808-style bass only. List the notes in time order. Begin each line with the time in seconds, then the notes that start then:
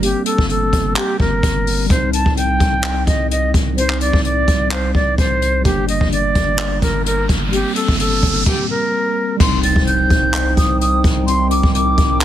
Already playing: G1
0.38 G1
0.73 G1
1.20 G1
1.43 G1
1.90 C2
2.26 C2
2.60 C2
3.07 C2
3.54 C2
4.13 C2
4.48 C2
4.95 C2
5.18 C2
5.65 G1
6.01 G1
6.35 G1
6.82 G1
7.29 G1
7.88 G1
8.23 G1
9.40 C2
9.76 C2
10.10 C2
10.57 C2
11.04 C2
11.63 C2
11.98 C2